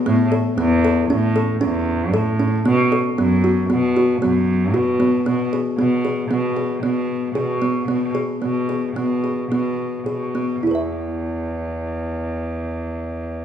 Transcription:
<<
  \new Staff \with { instrumentName = "Kalimba" } { \time 5/4 \key e \major \tempo 4 = 115 b8 a'8 b8 a'8 cis'8 a'8 cis'4 a'8 cis'8 | b8 a'8 b8 fis'8 b8 fis'8 b4 fis'8 b8 | b8 gis'8 b8 gis'8 b8 gis'8 b4 gis'8 b8 | b8 gis'8 b8 gis'8 b8 gis'8 b4 gis'8 b8 |
<e' gis' b' e''>1~ <e' gis' b' e''>4 | }
  \new Staff \with { instrumentName = "Cello" } { \clef bass \time 5/4 \key e \major a,8 r8 e,4 a,4 e,4 a,4 | b,8 r8 fis,4 b,4 fis,4 b,4 | b,8 r8 b,4 b,4 b,4 b,4 | b,8 r8 b,4 b,4 b,4 b,4 |
e,1~ e,4 | }
>>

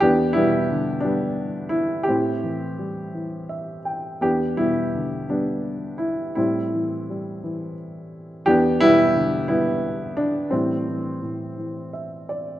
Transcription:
<<
  \new Staff \with { instrumentName = "Upright piano" } { \time 6/8 \key a \minor \tempo 4. = 57 << { r2. | r2 e''8 g''8 | r2. | r2. |
r2. | r2 e''8 d''8 | } \\ { g'8 e'4 d'4 e'8 | g'2~ g'8 r8 | g'8 e'4 d'4 e'8 | e'2 r4 |
g'8 e'4 e'4 d'8 | c'2~ c'8 r8 | } >> }
  \new Staff \with { instrumentName = "Upright piano" } { \clef bass \time 6/8 \key a \minor << { <b d'>8 <g b>4 <g b>4. | <c' e'>2~ <c' e'>8 r8 | <b d'>8 <g b>4 b4. | <g c'>2 r4 |
<b d'>8 <g b>4 b4. | <e g>2~ <e g>8 r8 | } \\ { e,8 b,8 d2 | a,8 e8 g8 e4. | e,8 b,8 d8 g4. | a,8 e8 g8 e4. |
e,8 b,8 d8 g4. | a,8 e8 a,8 e4. | } >> }
>>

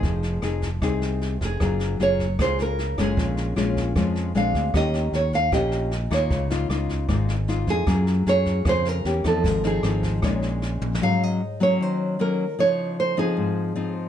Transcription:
<<
  \new Staff \with { instrumentName = "Nylon-string guitar" } { \time 4/4 \key bes \minor \tempo 4 = 153 aes'4. r2 aes'8~ | aes'4 des''4 c''8 bes'4 aes'8~ | aes'4. r4. f''4 | ees''4 des''8 f''8 ees''4. des''8~ |
des''4 r2 r8 aes'8~ | aes'8 r8 des''4 c''8 bes'4 a'8 | bes'8 aes'2 r4. | f''8 ees''4 des''8 c''4 bes'4 |
des''4 c''8 aes'2 r8 | }
  \new Staff \with { instrumentName = "Nylon-string guitar" } { \time 4/4 \key bes \minor << { <c' ees' aes'>4 <c' ees' aes'>8 r8 <c' ees' aes'>4. r8 | <bes f' aes'>4 <bes f' aes'>8 r8 <bes f' aes'>4 r8 <aes des' f'>8~ | <aes des' f'>4 <aes des' f'>4 <aes des' f'>4 <aes c' d'>4 | <bes des' g'>4. r8 <bes des' g'>4 r8 <bes ees' f'>8~ |
<bes ees' f'>8 <bes ees' f'>8 <bes ees' f'>4 <bes ees' f'>8 r8 <bes ees' f'>4 | <bes f' aes'>4 <bes f' aes'>4 <bes f' aes'>4 <bes cis' g'>8 <f c' ees'>8~ | <f c' ees'>8 <f c' ees'>8 <f c' ees'>4 <aes des' ees'>2 | <ges bes des'>4 r8 <ges bes des'>4. <ges bes des'>8 r8 |
<f ees'>4. <f c' ees'>4. <f c' ees'>4 | } \\ { f2 c2 | ges2 des2 | bes,2 f4 r4 | ees2 bes,2 |
des2 aes,2 | ges2 des4 r4 | aes,2 bes,2 | aes,2 ees2 |
des2 aes,2 | } >> }
  \new Staff \with { instrumentName = "Fingered electric bass" } { \clef bass \time 4/4 \key bes \minor f,,4 f,,4 c,4. f,,8 | ges,,4 ges,,4 des,4. ges,,8 | bes,,4 bes,,4 f,4 bes,,8 d,8 | ees,4 ees,4 bes,,4. ees,8 |
des,4 des,4 aes,,4. f,8 | ges,4 ges,4 f,4 e,8 e,8 | aes,,4 aes,,4 bes,,4. bes,,8 | r1 |
r1 | }
  \new DrumStaff \with { instrumentName = "Drums" } \drummode { \time 4/4 <bd sn>8 sn8 <ss sn>8 <bd sn>8 <bd ss sn>8 sn8 sn8 <bd sn>8 | <bd ss sn>8 sn8 sn8 <bd sn>8 <bd ss sn>8 sn8 sn8 <bd ss sn>8 | <bd sn>8 sn8 <ss sn>8 <bd sn>8 <bd ss sn>8 sn8 sn8 <bd sn>8 | <bd ss sn>8 sn8 sn8 <bd sn>8 <bd ss sn>8 sn8 sn8 <bd ss sn>8 |
<bd sn>8 sn8 <ss sn>8 <bd sn>8 <bd ss sn>8 sn8 sn8 <bd sn>8 | <bd ss sn>8 sn8 sn8 <bd sn>8 <bd ss sn>8 sn8 sn8 <bd ss sn>8 | <bd sn>8 sn8 <ss sn>8 <bd sn>8 <bd ss sn>8 sn8 \tuplet 3/2 { sn16 r16 r16 tommh16 r16 sn16 } | r4 r4 r4 r4 |
r4 r4 r4 r4 | }
>>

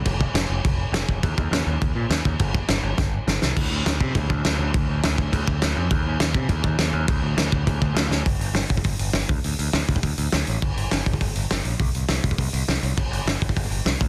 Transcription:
<<
  \new Staff \with { instrumentName = "Picked electric bass" } { \clef bass \time 4/4 \key ees \lydian \tempo 4 = 204 f,,4 f,,8 f,,8 f,,4 f,,8 f,,8 | ees,8 ees,8 ees,8 ees,8 ees,8 bes,8 ees,8 ees,8 | g,,4 g,,8 g,,8 g,,4 g,,8 c,8 | d,8 d,8 d,8 c8 d,8 d,8 d,8 d,8 |
d,8 d,8 d,8 d,8 d,8 d,8 d,8 f,8 | ees,8 ees,8 ees,8 c8 ees,8 ees,8 ees,8 ees,8 | d,8 d,8 d,8 d,8 d,8 d,8 d,8 d,8 | \key d \phrygian g,,8 g,,8 g,,8 g,,8 g,,8 g,,8 g,,8 d,8 |
d,8 d,8 d,8 d,8 d,8 d,8 d,8 a,,8 | g,,8 g,,8 g,,8 g,,8 g,,8 g,,8 g,,8 bes,,8 | c,8 c,8 c,8 c,8 c,8 c,8 c,8 c,8 | g,,8 g,,8 g,,8 g,,8 g,,8 g,,8 c,8 d,8 | }
  \new DrumStaff \with { instrumentName = "Drums" } \drummode { \time 4/4 <cymc bd>8 bd8 <cymc sn>4 <cymc bd>4 <cymc sn>8 bd8 | <cymc bd>8 bd8 <cymc sn>4 <cymc bd>4 <cymc sn>8 bd8 | <cymc bd>8 bd8 <cymc sn>4 <bd sn>4 sn8 sn8 | <cymc bd>4 <cymc sn>8 bd8 <cymc bd>8 bd8 <cymc sn>4 |
<cymc bd>4 <cymc sn>8 bd8 <cymc bd>8 bd8 <cymc sn>4 | <cymc bd>4 <cymc sn>8 bd8 <cymc bd>8 bd8 <cymc sn>4 | <cymc bd>4 <cymc sn>8 bd8 <cymc bd>8 bd8 <cymc sn>8 sn8 | <hho bd>8 hho8 <hho sn>8 <hho bd>16 bd16 <hho bd>8 hho8 <hho sn>8 <hho bd>8 |
hho8 hho8 <hho sn>8 <hho bd>16 bd16 <hho bd>8 hho8 <hho sn>8 hho8 | <cymc bd>8 hho8 <hho sn>8 <hho bd>16 bd16 <hho bd>8 hho8 <hho sn>8 hho8 | <hho bd>8 hho8 <hho sn>8 <hho bd>16 bd16 <hho bd>8 hho8 <hho sn>8 hho8 | <cymc bd>8 hho8 <hho sn>8 <hho bd>16 bd16 <hho bd>8 hho8 <hho sn>8 <hho bd>8 | }
>>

